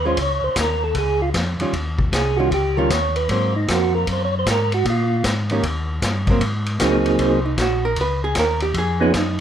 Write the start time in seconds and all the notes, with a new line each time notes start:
Already playing: D#2
0.05 G#3 C#4 F4 C5
0.17 C#2, kick, ride
0.22 C#5
0.42 C#2 C5
0.56 D#2, kick, snare, hi-hat pedal, ride
0.61 A#4
0.84 A4
0.94 C#2 G#4, kick, ride
1.22 F4
1.34 F2, kick, snare, hi-hat pedal, ride
1.58 F2 D#3 G3 C#4 F4, ride
1.73 D#2, kick, ride
1.99 kick
2.12 C2 G#4, kick, snare, hi-hat pedal, ride
2.37 D#3 G3 C#4 F4 F#4
2.51 C#2 G4, kick, ride
2.77 D#3 G3 C#4 F4 A#4
2.90 D#2 C#5, kick, snare, hi-hat pedal, ride
3.16 B4, ride
3.29 G#2 F#3 A#3 C4 C5, kick, ride
3.56 D#4
3.68 F2 A#3 C4 F#4, kick, snare, hi-hat pedal, ride
3.95 A#4
4.07 F#2, kick, ride
4.12 C5
4.25 C#5
4.39 C5
4.46 G#2, kick, snare, hi-hat pedal, ride
4.51 A#4
4.72 F#4, ride
4.85 A#2, kick, ride
4.90 F4
5.24 G#2, kick, snare, hi-hat pedal, ride
5.50 D#3 A#3 C#4 G4, ride
5.63 D#2, kick, ride
6.02 G2, kick, snare, hi-hat pedal, ride
6.27 F#3 A#3 C4, kick, ride
6.40 G#2, kick, ride
6.66 ride
6.80 C#2 F#3 A#3 C4 D#4 G#4, kick, snare, hi-hat pedal, ride
7.06 ride
7.19 C2 C5, kick, ride
7.45 D#4
7.57 A#1 F#4, kick, snare, hi-hat pedal, ride
7.85 A#4
7.96 C#2, kick, ride
8.01 B4
8.24 G#4
8.35 D#2, kick, snare, hi-hat pedal, ride
8.39 A#4
8.60 G4, ride
8.74 F2, kick, ride
8.78 G#4
9.00 F3 B3 C#4 D#4 G#4
9.14 F#2 D#4, kick, snare, hi-hat pedal, ride